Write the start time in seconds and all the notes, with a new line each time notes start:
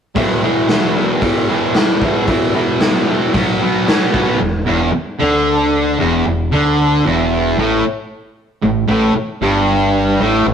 0.15 E2 B2 E3, kick, open hi-hat
0.43 E2 B2 E3
0.68 E2 B2 E3, snare, open hi-hat
0.95 E2 B2 E3
1.22 E2 B2 E3, kick, open hi-hat
1.49 E2 B2 E3
1.74 E2 B2 E3, snare, open hi-hat
2.02 E2 B2 E3, kick
2.27 E2 B2 E3, kick, open hi-hat
2.54 E2 B2 E3
2.80 E2 B2 E3, snare, open hi-hat
3.07 E2 B2 E3
3.34 B2 F#3 B3, kick, open hi-hat
3.61 B2 F#3 B3
3.87 B2 F#3 B3, snare, open hi-hat
4.14 B2 F#3 B3, kick
4.41 E1 E2
4.67 E1 E2
4.93 muted distorted electric guitar stroke, muted fingered electric bass stroke
5.19 D2 D3
5.99 E1 E2
6.27 E1 E2
6.52 D2 D3
7.05 E1 E2
7.57 A1 A2
8.63 A1 A2
8.88 A1 A2
9.15 muted distorted electric guitar stroke
9.41 G1 G2
10.20 A1 A2
10.46 A1 A2